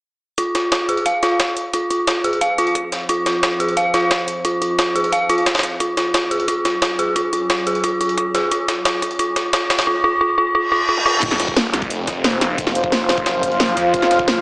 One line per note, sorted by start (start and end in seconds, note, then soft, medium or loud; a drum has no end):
0.38 0.43 F4 loud
0.38 5.76 F4 medium
0.38 5.76 C5 medium
0.38 3.06 F5 medium
0.38 kick medium
0.38 closed hi-hat medium
0.55 0.67 F4 medium
0.55 snare medium
0.55 closed hi-hat medium
0.72 0.84 F4 loud
0.72 kick loud
0.72 snare loud
0.72 closed hi-hat medium
0.89 0.94 G#4 medium
0.89 closed hi-hat medium
0.97 closed hi-hat soft
1.06 1.18 F5 loud
1.06 kick loud
1.06 closed hi-hat loud
1.06 closed hi-hat medium
1.23 1.31 F4 loud
1.23 snare soft
1.23 closed hi-hat medium
1.40 kick medium
1.40 snare loud
1.40 closed hi-hat loud
1.40 closed hi-hat medium
1.57 closed hi-hat medium
1.73 1.79 F4 loud
1.73 kick loud
1.73 closed hi-hat medium
1.90 2.03 F4 medium
1.90 closed hi-hat medium
2.07 2.20 F4 loud
2.07 kick loud
2.07 snare loud
2.07 closed hi-hat medium
2.24 2.29 G#4 medium
2.24 closed hi-hat medium
2.33 closed hi-hat soft
2.41 2.54 F5 loud
2.41 kick loud
2.41 closed hi-hat medium
2.58 2.67 F4 loud
2.58 closed hi-hat medium
2.67 closed hi-hat soft
2.75 kick loud
2.75 closed hi-hat medium
2.92 snare soft
2.92 closed hi-hat medium
3.09 3.14 F4 loud
3.09 5.78 D#5 medium
3.09 kick medium
3.09 closed hi-hat medium
3.26 3.39 F4 medium
3.26 snare medium
3.26 closed hi-hat medium
3.43 3.56 F4 loud
3.43 kick loud
3.43 snare loud
3.43 closed hi-hat medium
3.60 3.65 G#4 medium
3.60 closed hi-hat medium
3.69 closed hi-hat soft
3.77 3.90 F5 loud
3.77 kick loud
3.77 closed hi-hat medium
3.94 4.02 F4 loud
3.94 snare medium
3.94 closed hi-hat medium
4.11 kick loud
4.11 snare loud
4.11 closed hi-hat medium
4.28 closed hi-hat medium
4.45 4.50 F4 loud
4.45 kick medium
4.45 closed hi-hat medium
4.62 4.74 F4 medium
4.62 closed hi-hat medium
4.79 4.91 F4 loud
4.79 kick loud
4.79 snare loud
4.79 closed hi-hat medium
4.95 5.01 G#4 medium
4.95 closed hi-hat medium
5.04 closed hi-hat soft
5.12 5.25 F5 loud
5.12 kick loud
5.12 closed hi-hat medium
5.29 5.38 F4 loud
5.29 closed hi-hat medium
5.38 closed hi-hat soft
5.46 kick loud
5.46 snare loud
5.46 closed hi-hat medium
5.55 snare medium
5.55 closed hi-hat medium
5.59 snare medium
5.59 closed hi-hat medium
5.63 snare soft
5.63 closed hi-hat medium
5.80 9.83 F#3 medium
5.80 5.85 F4 medium
5.80 9.83 C#5 medium
5.80 9.83 G#5 medium
5.80 kick loud
5.80 closed hi-hat medium
5.97 6.10 F4 medium
5.97 snare medium
5.97 closed hi-hat medium
6.14 6.27 F4 medium
6.14 kick loud
6.14 snare loud
6.14 closed hi-hat medium
6.31 6.36 G#4 medium
6.31 closed hi-hat medium
6.40 closed hi-hat soft
6.48 6.53 F4 medium
6.48 kick loud
6.48 closed hi-hat medium
6.65 6.78 F4 medium
6.65 snare medium
6.65 closed hi-hat medium
6.82 6.95 F4 medium
6.82 kick loud
6.82 snare loud
6.82 closed hi-hat medium
6.99 7.04 G#4 medium
6.99 closed hi-hat medium
7.16 7.21 F4 loud
7.16 kick loud
7.16 closed hi-hat medium
7.33 7.45 F4 medium
7.33 closed hi-hat medium
7.50 7.62 F4 medium
7.50 kick loud
7.50 snare loud
7.50 closed hi-hat medium
7.67 7.72 G#4 medium
7.67 closed hi-hat medium
7.75 closed hi-hat soft
7.84 7.89 F4 loud
7.84 kick loud
7.84 closed hi-hat medium
8.01 8.13 F4 medium
8.01 closed hi-hat medium
8.09 closed hi-hat soft
8.18 8.30 F4 medium
8.18 kick loud
8.18 closed hi-hat medium
8.35 8.40 G#4 medium
8.35 snare soft
8.35 closed hi-hat medium
8.51 8.57 F4 loud
8.51 kick loud
8.51 closed hi-hat medium
8.51 closed hi-hat loud
8.68 8.81 F4 medium
8.68 kick loud
8.68 snare medium
8.68 closed hi-hat medium
8.85 8.90 F4 loud
8.85 kick loud
8.85 snare loud
8.85 closed hi-hat medium
8.85 closed hi-hat loud
9.02 9.15 F4 medium
9.02 kick loud
9.02 closed hi-hat medium
9.11 closed hi-hat soft
9.19 9.24 F4 loud
9.19 kick loud
9.19 closed hi-hat medium
9.19 closed hi-hat loud
9.36 9.49 F4 medium
9.36 kick loud
9.36 snare medium
9.36 closed hi-hat medium
9.53 9.58 F4 loud
9.53 kick loud
9.53 snare loud
9.53 closed hi-hat medium
9.53 closed hi-hat loud
9.70 9.83 F4 medium
9.70 kick loud
9.70 snare loud
9.70 closed hi-hat medium
9.79 snare loud
9.79 closed hi-hat medium
9.87 9.92 F4 loud
10.04 10.09 F4 loud
10.21 10.26 F4 loud
10.38 10.43 F4 loud
10.55 10.60 F4 loud
10.55 reverse cymbal medium
10.72 10.77 F4 loud
10.89 10.94 F4 loud
10.97 high tom medium
11.06 11.11 F4 loud
11.06 mid tom medium
11.14 mid tom medium
11.23 11.72 F1 loud
11.23 14.41 F4 medium
11.23 13.91 C5 medium
11.23 14.41 F5 medium
11.23 kick loud
11.23 closed hi-hat medium
11.23 crash loud
11.23 sub drop medium
11.31 snare soft
11.40 snare medium
11.40 closed hi-hat loud
11.40 closed hi-hat medium
11.48 kick loud
11.57 snare loud
11.57 closed hi-hat medium
11.73 11.89 C2 loud
11.73 snare medium
11.73 closed hi-hat loud
11.73 closed hi-hat medium
11.82 kick loud
11.82 closed hi-hat soft
11.90 13.25 F1 loud
11.90 closed hi-hat medium
12.07 kick medium
12.07 snare medium
12.07 closed hi-hat loud
12.07 closed hi-hat medium
12.24 snare loud
12.24 closed hi-hat medium
12.41 snare medium
12.41 closed hi-hat medium
12.58 kick loud
12.58 closed hi-hat medium
12.67 snare soft
12.75 closed hi-hat medium
12.84 kick loud
12.92 snare loud
12.92 closed hi-hat medium
13.09 snare loud
13.09 snare soft
13.09 closed hi-hat medium
13.09 open hi-hat medium
13.18 kick loud
13.18 closed hi-hat soft
13.26 13.76 F#1 loud
13.26 snare loud
13.26 closed hi-hat medium
13.43 kick medium
13.43 closed hi-hat loud
13.43 closed hi-hat medium
13.52 closed hi-hat soft
13.60 snare loud
13.60 closed hi-hat medium
13.68 closed hi-hat soft
13.77 13.92 F2 loud
13.77 kick medium
13.77 snare soft
13.77 closed hi-hat medium
13.77 closed hi-hat loud
13.94 14.41 F1 loud
13.94 14.41 A#4 medium
13.94 kick loud
13.94 closed hi-hat medium
14.02 snare soft
14.11 snare medium
14.11 closed hi-hat medium
14.19 kick loud
14.28 snare loud
14.28 closed hi-hat medium